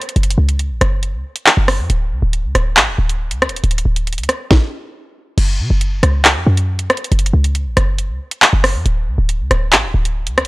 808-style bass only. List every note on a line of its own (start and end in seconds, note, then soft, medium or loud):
0.16 0.37 F#1 loud
0.38 0.72 C#2 loud
0.70 0.81 A1 loud
0.81 1.15 F#1 loud
1.14 1.24 C#2 loud
1.57 1.80 F#1 loud
1.79 1.89 F#2 loud
1.90 2.13 D1 loud
2.12 2.22 D2 loud
2.22 2.46 D1 loud
2.44 2.55 D2 loud
2.55 2.78 D1 loud
2.77 2.89 A1 loud
2.88 2.98 D1 loud
2.98 3.33 D1 loud
3.31 3.49 D2 loud
3.47 3.63 D1 loud
3.64 3.85 D1 loud
3.85 4.19 D1 loud
4.18 4.28 D2 loud
5.38 5.61 F#1 loud
5.59 5.70 C#3 loud
5.70 6.02 F#1 loud
6.03 6.37 C#2 loud
6.36 6.46 F#2 loud
6.47 6.88 F#2 loud
7.12 7.32 F#1 loud
7.33 7.68 C#2 loud
7.66 7.76 A1 loud
7.77 8.11 F#1 loud
8.09 8.20 C#2 loud
8.53 8.76 F#1 loud
8.75 8.85 F#2 loud
8.86 9.09 D1 loud
9.07 9.18 D2 loud
9.18 9.41 D1 loud
9.40 9.50 D2 loud
9.51 9.74 D1 loud
9.72 9.85 A1 loud
9.83 9.94 D1 loud
9.94 10.28 D1 loud
10.27 10.45 D2 loud
10.43 10.48 D1 loud